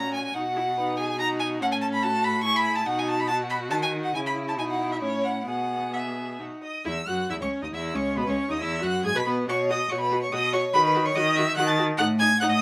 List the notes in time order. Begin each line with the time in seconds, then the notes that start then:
Already playing: A#2 C#4 F#4 A#5
0.14 G#5
0.25 G#5
0.34 B2 D#4 F#4 F#5
0.56 E4
0.77 D#4 B4
0.97 G#4 G#5
1.19 D#4 F#4 A#5
1.39 G#5
1.61 A2 C#4 A4 F#5
1.72 G#5
1.81 A5
1.93 B5
2.03 F#4 A5
2.24 B5
2.44 E4 G#4 C#6
2.56 B5
2.76 A5
2.86 B2 D#4 F#4 F#5
2.99 G#5
3.08 A5
3.20 B5
3.28 F#4 A5
3.50 B5
3.71 D#3 D#4 A5
3.82 G#5
4.03 F#5
4.14 C#3 E4 G#5
4.26 B5
4.48 A5
4.58 B2 D#4 G#5
4.71 F#5
4.92 E5
5.01 A2 C#4 C#5
5.25 F#5
5.47 B2 B3 G#4 F#5
5.94 E5
6.39 B2 D#4 F#4
6.63 D#5 D#6
6.85 E2 E4 E5 E6
7.07 F#2 F#4 F#5 F#6
7.30 E2 E4 E5 E6
7.40 C#2 C#4 C#5 C#6
7.62 D#2 D#4 D#5 D#6
7.72 E2 E4 E5 E6
7.94 C#2 C#4 C#5 C#6
8.17 B2 B3 B4 B5
8.27 C#2 C#4 C#5 C#6
8.49 D#2 D#4 D#5 D#6
8.60 E2 E4 E5 E6
8.82 F#2 F#4 F#5 F#6
9.03 G#2 G#4 G#5 G#6
9.15 B2 B4 B5 B6
9.25 B2 B3 B4 B5
9.47 B2 F#4 C#5 C#6
9.69 F#4 D#5 D#6
9.90 B2 F#4 C#5 C#6
10.00 B4 B5
10.11 F#4
10.22 C#5 C#6
10.32 B2 F#4 D#5 D#6
10.53 F#4 C#5 C#6
10.73 D#3 F#4 B4 B5
10.84 B4 B5
10.95 F#4
11.05 C#5 C#6
11.15 D#3 F#4 D#5 D#6
11.36 F#4 E5 E6
11.56 D#3 F#4 F#5 F#6
11.67 A5 A6
11.78 F#4
11.97 A2 D#4 F#5 F#6
12.19 D#4 G#5 G#6
12.40 A2 D#4 F#5 F#6
12.50 D#5 D#6